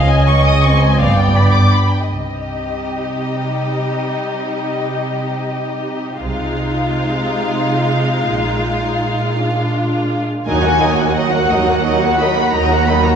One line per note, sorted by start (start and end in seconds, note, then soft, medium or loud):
0.00 1.00 C#2 medium
0.00 0.68 C#4 medium
0.00 1.00 D#5 medium
0.00 1.00 G#5 medium
0.11 0.29 G#5 soft
0.28 0.47 C#6 soft
0.46 0.65 D#6 soft
0.64 1.04 C4 medium
0.64 0.83 C#6 soft
0.82 1.01 G#5 medium
1.00 1.91 G1 medium
1.00 1.91 G2 medium
1.00 2.11 B3 medium
1.00 1.91 D5 medium
1.00 1.18 F5 medium
1.00 1.90 G5 medium
1.20 1.39 G5 medium
1.36 1.56 B5 soft
1.54 1.74 D6 soft
1.74 1.93 B5 soft
1.91 2.10 G5 soft
2.09 2.76 C2 soft
2.09 6.19 C3 soft
2.09 6.19 G3 soft
2.09 6.19 D#4 soft
2.09 6.18 G4 soft
2.09 6.18 D#5 soft
6.22 6.88 C2 soft
6.22 8.29 C3 soft
6.22 10.22 G#3 medium
6.22 9.36 D#4 medium
6.22 10.22 F4 soft
6.22 10.26 F5 soft
8.33 9.01 A#1 soft
8.33 10.23 A#2 soft
9.39 10.27 D4 soft
10.47 11.38 D#2 medium
10.47 11.39 D#2 medium
10.47 10.64 F#3 medium
10.47 10.64 D#4 medium
10.47 10.63 A#4 medium
10.47 10.64 D#5 medium
10.47 11.12 G#5 medium
10.64 10.82 A#3 medium
10.64 10.82 F#4 medium
10.64 10.82 F#4 soft
10.64 10.82 F#5 soft
10.81 10.99 F#3 soft
10.81 10.99 D#4 soft
10.81 10.98 A#4 soft
10.81 10.99 D#5 soft
10.98 11.16 A#3 soft
10.98 11.16 F#4 soft
10.98 11.16 F#5 soft
11.15 11.32 F#3 soft
11.15 11.32 D#4 medium
11.15 11.32 A#4 soft
11.15 11.32 D#5 soft
11.15 12.19 F#5 medium
11.33 11.50 A#3 soft
11.33 11.50 F#4 soft
11.33 11.51 F#4 soft
11.33 11.50 F#5 medium
11.51 12.41 D#2 medium
11.51 11.68 F#3 soft
11.51 11.68 D#4 medium
11.51 11.68 A#4 soft
11.51 11.68 D#5 soft
11.67 11.85 A#3 soft
11.67 11.84 F#4 soft
11.67 11.85 F#4 soft
11.67 11.85 F#5 medium
11.84 12.01 F#3 soft
11.84 12.01 D#4 soft
11.84 12.00 A#4 soft
11.84 12.00 D#5 soft
12.02 12.19 A#3 soft
12.02 12.19 F#4 medium
12.02 12.20 F#4 soft
12.02 12.19 F#5 soft
12.18 12.36 F#3 soft
12.18 12.36 D#4 soft
12.18 12.37 A#4 soft
12.18 12.37 D#5 soft
12.18 12.52 B5 medium
12.36 12.53 A#3 soft
12.36 12.53 F#4 soft
12.36 12.54 F#4 soft
12.36 12.54 F#5 soft
12.53 13.15 D#2 medium
12.53 12.69 F#3 medium
12.53 12.69 D#4 medium
12.53 12.70 A#4 medium
12.53 12.70 D#5 medium
12.53 12.87 A#5 medium
12.71 12.88 A#3 soft
12.71 12.87 F#4 soft
12.71 12.88 F#4 soft
12.71 12.88 F#5 soft
12.87 13.04 F#3 soft
12.87 13.04 D#4 soft
12.87 13.05 A#4 soft
12.87 13.05 D#5 soft
12.87 13.04 B5 medium
13.03 13.15 A#3 soft
13.03 13.15 F#4 soft
13.03 13.15 F#5 soft
13.03 13.15 A#5 medium